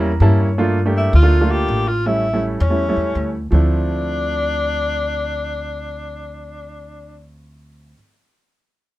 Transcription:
0.00 0.17 E2 loud
0.00 0.10 G3 loud
0.00 0.10 A#3 medium
0.00 0.11 C#4 medium
0.00 0.11 E4 loud
0.00 0.20 A#5 medium
0.20 1.07 G2 medium
0.20 0.47 G3 medium
0.20 0.47 A#3 medium
0.20 0.47 C#4 medium
0.20 0.48 E4 loud
0.20 0.39 A5 medium
0.40 0.57 C#5 medium
0.58 0.78 A3 medium
0.58 0.78 A#3 medium
0.58 0.78 D4 medium
0.58 0.78 F4 medium
0.86 1.11 A3 medium
0.86 1.12 A#3 medium
0.86 1.12 D4 medium
0.86 1.12 G4 medium
0.97 1.13 E4 medium
1.13 1.65 D2 medium
1.13 1.52 F4 loud
1.23 1.35 A3 medium
1.23 1.36 A#3 medium
1.23 1.36 D4 medium
1.23 1.36 F4 medium
1.41 1.86 A3 medium
1.41 1.86 A#3 medium
1.41 1.86 D4 medium
1.41 1.87 F4 medium
1.51 1.89 G4 medium
1.68 2.55 A1 medium
1.88 2.08 F4 medium
2.06 2.25 G3 medium
2.06 2.25 A3 medium
2.06 2.25 C#4 medium
2.06 2.43 E4 medium
2.06 2.25 E4 medium
2.33 2.59 G3 medium
2.33 2.59 A3 medium
2.33 2.59 C#4 medium
2.33 2.59 E4 medium
2.60 2.95 E2 medium
2.60 3.31 C#4 medium
2.70 2.83 G3 medium
2.70 2.83 A3 medium
2.70 2.83 C#4 medium
2.70 2.83 E4 medium
2.88 3.33 G3 medium
2.88 3.34 A3 medium
2.88 3.34 C#4 medium
2.88 3.34 E4 medium
2.97 3.14 E2 medium
3.15 3.48 D2 medium
3.51 7.93 D2 medium
3.51 7.92 F3 medium
3.51 7.93 A3 medium
3.51 7.94 C4 medium
3.51 7.24 D4 medium
3.55 7.94 E4 medium

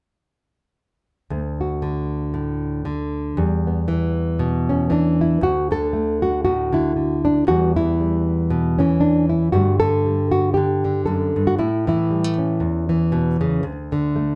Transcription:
1.30 3.37 D2 medium
1.30 3.35 A3 soft
1.61 3.35 F#4 soft
1.82 2.84 D3 soft
2.34 2.86 A2 soft
2.85 3.37 D3 medium
3.37 5.40 E2 medium
3.37 5.43 G3 soft
3.67 4.69 B3 soft
3.88 4.89 E3 medium
4.39 4.91 B2 medium
4.69 5.21 C#4 medium
4.90 5.40 E3 medium
4.90 5.43 D4 medium
5.21 5.44 E4 medium
5.41 7.46 D2 medium
5.41 5.72 F#4 medium
5.71 6.71 D3 soft
5.71 6.22 A4 loud
5.93 6.74 A3 soft
6.22 6.43 F#4 medium
6.45 6.74 A2 medium
6.45 7.24 F#4 medium
6.73 6.95 D3 medium
6.73 7.48 E4 medium
6.96 7.47 D3 soft
7.25 7.48 D4 medium
7.47 9.50 E2 medium
7.47 7.75 E3 soft
7.47 8.00 G3 soft
7.47 8.78 B3 soft
7.47 7.76 F#4 medium
7.76 8.79 E3 medium
7.76 9.00 E4 medium
8.00 9.53 G3 soft
8.50 8.79 B2 medium
8.79 9.51 E3 medium
8.79 9.53 C#4 medium
9.00 9.29 D4 medium
9.29 9.52 E4 medium
9.52 11.07 G2 medium
9.52 9.81 D3 soft
9.52 10.05 G3 soft
9.52 12.24 A3 soft
9.52 9.79 F#4 medium
9.80 10.56 D3 medium
9.80 10.31 A4 medium
10.06 11.59 G3 soft
10.31 10.54 F#4 medium
10.54 10.83 D3 medium
10.54 11.05 G4 medium
10.84 11.59 D3 medium
11.06 11.36 F#2 medium
11.06 11.47 A4 medium
11.36 11.59 G2 medium
11.47 11.59 F#4 medium
11.59 12.62 A2 medium
11.59 11.87 E4 medium
11.87 12.88 E3 soft
11.87 13.65 E4 medium
12.11 12.24 G3 soft
12.24 13.64 A3 soft
12.38 13.62 C#4 soft
12.60 13.61 E2 medium
12.89 13.61 E3 medium
13.12 13.40 B2 medium
13.41 13.64 C#3 medium
13.63 14.35 D2 medium
13.92 14.35 D3 medium
14.16 14.35 A3 soft

